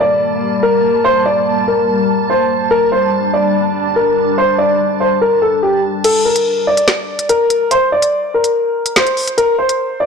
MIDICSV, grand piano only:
0, 0, Header, 1, 2, 480
1, 0, Start_track
1, 0, Tempo, 416667
1, 1203, Time_signature, 4, 2, 24, 8
1, 11589, End_track
2, 0, Start_track
2, 0, Title_t, "Grand piano"
2, 0, Program_c, 0, 0
2, 5, Note_on_c, 0, 74, 89
2, 681, Note_off_c, 0, 74, 0
2, 724, Note_on_c, 0, 70, 101
2, 1175, Note_off_c, 0, 70, 0
2, 1204, Note_on_c, 0, 72, 105
2, 1395, Note_off_c, 0, 72, 0
2, 1447, Note_on_c, 0, 74, 88
2, 1896, Note_off_c, 0, 74, 0
2, 1932, Note_on_c, 0, 70, 75
2, 2605, Note_off_c, 0, 70, 0
2, 2646, Note_on_c, 0, 72, 76
2, 3096, Note_off_c, 0, 72, 0
2, 3119, Note_on_c, 0, 70, 108
2, 3312, Note_off_c, 0, 70, 0
2, 3363, Note_on_c, 0, 72, 82
2, 3814, Note_off_c, 0, 72, 0
2, 3842, Note_on_c, 0, 74, 83
2, 4520, Note_off_c, 0, 74, 0
2, 4562, Note_on_c, 0, 70, 81
2, 5014, Note_off_c, 0, 70, 0
2, 5045, Note_on_c, 0, 72, 88
2, 5235, Note_off_c, 0, 72, 0
2, 5282, Note_on_c, 0, 74, 84
2, 5734, Note_off_c, 0, 74, 0
2, 5764, Note_on_c, 0, 72, 75
2, 5955, Note_off_c, 0, 72, 0
2, 6007, Note_on_c, 0, 70, 83
2, 6197, Note_off_c, 0, 70, 0
2, 6242, Note_on_c, 0, 69, 81
2, 6433, Note_off_c, 0, 69, 0
2, 6482, Note_on_c, 0, 67, 76
2, 6674, Note_off_c, 0, 67, 0
2, 6961, Note_on_c, 0, 69, 98
2, 7153, Note_off_c, 0, 69, 0
2, 7202, Note_on_c, 0, 70, 78
2, 7654, Note_off_c, 0, 70, 0
2, 7687, Note_on_c, 0, 74, 93
2, 8362, Note_off_c, 0, 74, 0
2, 8402, Note_on_c, 0, 70, 105
2, 8854, Note_off_c, 0, 70, 0
2, 8882, Note_on_c, 0, 72, 103
2, 9074, Note_off_c, 0, 72, 0
2, 9127, Note_on_c, 0, 74, 90
2, 9576, Note_off_c, 0, 74, 0
2, 9612, Note_on_c, 0, 70, 80
2, 10284, Note_off_c, 0, 70, 0
2, 10324, Note_on_c, 0, 72, 79
2, 10775, Note_off_c, 0, 72, 0
2, 10801, Note_on_c, 0, 70, 109
2, 10993, Note_off_c, 0, 70, 0
2, 11042, Note_on_c, 0, 72, 83
2, 11494, Note_off_c, 0, 72, 0
2, 11522, Note_on_c, 0, 74, 84
2, 11589, Note_off_c, 0, 74, 0
2, 11589, End_track
0, 0, End_of_file